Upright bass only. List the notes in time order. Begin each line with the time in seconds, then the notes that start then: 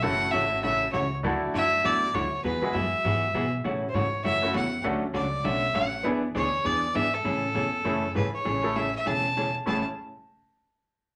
0.03 F#1
0.33 G#1
0.64 A1
0.94 C#2
1.24 D2
1.54 F#2
1.84 E2
2.14 D2
2.44 E2
2.75 F#2
2.92 muted upright bass stroke
3.04 G#2
3.34 B2
3.64 A2
3.94 G#2
4.24 F#2
4.54 E2
4.85 D2
5.14 C#2
5.45 B1
5.75 A1
6.05 E2
6.35 D2
6.65 E2
6.95 G#2
7.25 A2
7.55 E2
7.85 F#2
8.16 G#2
8.46 A1
9.06 E1
9.67 A1